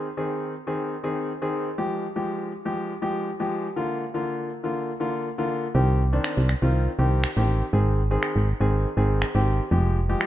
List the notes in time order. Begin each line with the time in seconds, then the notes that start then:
0.17 D#3 C4 G#4
0.67 D#3 C4 G#4
1.03 D#3 C4 G#4
1.42 D#3 C4 G#4
1.78 F3 G#3 G4
2.16 F3 G#3 G4
2.65 F3 G#3 G4
3.02 F3 G#3 G4
3.40 F3 G#3 G4
3.76 D3 A#3 F4
4.14 D3 A#3 F4
4.64 D3 A#3 F4
5.00 D3 A#3 F4
5.38 D3 A#3 F4
5.74 C2 D#3 C4 G4
6.13 D#3 C4 D4
6.24 finger snap
6.37 C2
6.49 finger snap
6.62 C2 D#3 C4 F4
6.99 C2 D#3 C4 G4
7.24 finger snap
7.37 A1 D#3 C4 G4
7.73 G#1 D#3 C4 G#4
8.11 D#3 C4 G#4
8.23 finger snap
8.36 G#1
8.60 G#1 D#3 C4 G#4
8.97 G#1 D#3 C4 G#4
9.22 finger snap
9.35 G#1 D#3 C4 G4
9.71 F1 F3 G#3 G4
10.09 F3 G#3 G4
10.21 finger snap